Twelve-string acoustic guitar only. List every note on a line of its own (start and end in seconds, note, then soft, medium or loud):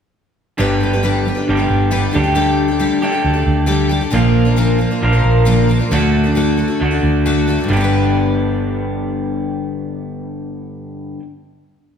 0.58 0.81 G2 medium
0.58 0.81 D3 medium
0.58 0.79 G3 medium
0.58 0.82 D4 medium
0.58 0.82 G4 medium
0.58 0.82 B4 medium
0.81 0.92 G3 soft
0.81 0.93 D4 medium
0.81 0.93 G4 medium
0.81 0.92 B4 medium
0.93 1.02 G3 soft
0.93 1.03 D4 soft
0.93 1.04 G4 soft
0.93 1.04 B4 medium
1.03 1.26 G2 medium
1.03 1.26 D3 medium
1.03 1.24 G3 medium
1.03 1.26 D4 medium
1.03 1.26 G4 medium
1.03 1.27 B4 medium
1.25 1.36 G3 soft
1.25 1.36 D4 soft
1.25 1.35 G4 soft
1.25 1.34 B4 medium
1.35 1.59 G3 soft
1.35 1.58 D4 soft
1.35 1.57 G4 soft
1.35 1.56 B4 medium
1.57 1.90 G3 soft
1.57 1.90 D4 soft
1.57 1.90 G4 soft
1.57 1.91 B4 soft
1.91 2.14 G2 medium
1.91 2.14 D3 medium
1.91 2.10 G3 medium
1.91 2.12 D4 medium
1.91 2.12 G4 medium
1.91 2.14 B4 medium
2.11 2.24 G3 medium
2.11 2.25 D4 medium
2.11 2.24 G4 medium
2.11 2.22 A4 medium
2.23 2.34 D4 soft
2.23 2.35 G4 soft
2.23 2.35 A4 medium
2.35 2.69 D3 medium
2.35 2.69 G3 medium
2.35 2.69 D4 medium
2.35 2.68 G4 medium
2.35 2.67 A4 medium
2.68 2.79 D4 soft
2.68 2.80 G4 soft
2.68 2.80 A4 medium
2.79 3.02 D3 medium
2.79 3.00 G3 medium
2.79 3.01 D4 medium
2.79 3.02 G4 medium
2.79 3.03 A4 medium
3.02 3.13 G3 soft
3.02 3.14 D4 medium
3.02 3.13 G4 medium
3.02 3.11 A4 medium
3.12 3.35 D4 soft
3.12 3.34 G4 soft
3.12 3.32 A4 medium
3.34 3.66 D4 soft
3.34 3.66 G4 soft
3.34 3.67 A4 medium
3.66 3.90 D3 medium
3.66 3.88 G3 medium
3.66 3.90 D4 medium
3.66 3.90 G4 medium
3.66 3.91 A4 medium
3.89 4.01 G3 medium
3.89 4.02 D4 medium
3.89 4.01 G4 medium
3.89 4.00 A4 medium
4.01 4.11 D4 soft
4.01 4.12 G4 soft
4.01 4.12 A4 soft
4.10 4.45 A#2 medium
4.10 4.46 D3 medium
4.10 4.46 F3 medium
4.10 4.46 A#3 medium
4.10 4.45 D4 medium
4.10 4.44 A#4 medium
4.45 4.56 F3 soft
4.45 4.57 A#3 soft
4.45 4.57 D4 medium
4.45 4.57 A#4 medium
4.56 4.79 A#2 medium
4.56 4.80 D3 medium
4.56 4.77 F3 medium
4.56 4.79 A#3 medium
4.56 4.80 D4 medium
4.56 4.80 A#4 medium
4.79 4.90 F3 medium
4.79 4.91 A#3 medium
4.79 4.90 D4 soft
4.79 4.90 A#4 medium
4.91 5.14 F3 soft
4.91 5.13 A#3 soft
4.91 5.13 D4 soft
4.91 5.11 A#4 medium
5.13 5.45 F3 soft
5.13 5.45 A#3 soft
5.13 5.46 D4 soft
5.13 5.46 A#4 medium
5.45 5.68 A#2 medium
5.45 5.69 D3 medium
5.45 5.68 F3 medium
5.45 5.68 A#3 medium
5.45 5.69 D4 medium
5.45 5.69 A#4 medium
5.69 5.80 F3 medium
5.69 5.80 A#3 medium
5.69 5.79 D4 medium
5.69 5.78 A#4 medium
5.79 5.91 F3 soft
5.79 5.91 A#3 soft
5.79 5.91 D4 soft
5.79 5.91 A#4 medium
5.91 6.24 D3 medium
5.91 6.25 A3 medium
5.91 6.25 D4 medium
5.91 6.24 F#4 medium
5.91 6.23 A4 medium
6.24 6.36 D4 soft
6.24 6.36 F#4 soft
6.24 6.35 A4 medium
6.35 6.58 D3 medium
6.35 6.56 A3 medium
6.35 6.57 D4 medium
6.35 6.58 F#4 medium
6.35 6.59 A4 medium
6.57 6.69 A3 soft
6.57 6.69 D4 soft
6.57 6.68 F#4 medium
6.57 6.67 A4 medium
6.68 6.92 D4 soft
6.68 6.91 F#4 soft
6.68 6.90 A4 medium
6.91 7.25 D4 soft
6.91 7.25 F#4 soft
6.91 7.25 A4 soft
7.26 7.48 D3 medium
7.26 7.46 A3 medium
7.26 7.47 D4 medium
7.26 7.48 F#4 medium
7.26 7.48 A4 medium
7.47 7.59 A3 medium
7.47 7.59 D4 medium
7.47 7.59 F#4 medium
7.47 7.57 A4 medium
7.58 7.71 D4 soft
7.58 7.71 F#4 soft
7.58 7.70 A4 soft
7.64 11.14 G2 medium
7.69 11.19 D3 medium
7.73 11.23 G3 medium
7.73 11.27 B3 medium
7.81 11.31 D4 medium
7.81 11.34 B4 medium